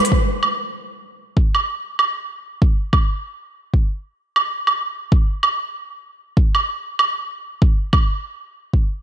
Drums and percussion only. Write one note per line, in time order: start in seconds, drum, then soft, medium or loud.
0.05 open hi-hat medium
0.12 kick loud
0.43 low woodblock medium
1.37 kick medium
1.55 low woodblock medium
1.99 low woodblock medium
2.62 kick loud
2.93 kick loud
2.93 low woodblock medium
3.74 kick medium
4.36 low woodblock medium
4.67 low woodblock medium
5.12 kick loud
5.43 low woodblock medium
6.37 kick loud
6.55 low woodblock medium
6.99 low woodblock medium
7.62 kick loud
7.93 kick loud
7.93 low woodblock medium
8.73 kick medium